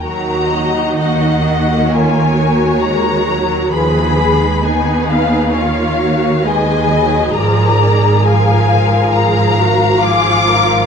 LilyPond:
<<
  \new Staff \with { instrumentName = "Violin section" } { \time 4/4 \key ees \minor \tempo 4 = 66 bes''4 ges''4 aes''4 bes''4 | ces'''4 aes''8 f''8 f''4 aes''4 | bes''4 aes''4 bes''4 d'''4 | }
  \new Staff \with { instrumentName = "Violin section" } { \time 4/4 \key ees \minor << { bes'8 ees''8 ees''4 des''2 | ces''4 ces''4 des''4 ees''4 | d''4 f''4 f''2 | } \\ { ges'4 ges'4 bes'4 bes'4 | aes'4 aes'4 des''4 ces''4 | bes'2. aes'8 bes'8 | } >> }
  \new Staff \with { instrumentName = "Viola section" } { \time 4/4 \key ees \minor << { ees'2 f'8 ges'4. | aes'4 ees'4 f'8 ges'8 aes'4~ | aes'2 aes'8 ges'8 f'4 | } \\ { ges4 bes8 bes4. aes8 ges8 | f8 aes8 ces'4 bes4 aes8 ges8 | f8 ees8 f2 f4 | } >> }
  \new Staff \with { instrumentName = "Cello section" } { \clef bass \time 4/4 \key ees \minor ees1 | ees1 | aes,1 | }
  \new Staff \with { instrumentName = "Double bass section" } { \clef bass \time 4/4 \key ees \minor ees,1 | ees,1 | aes,,1 | }
>>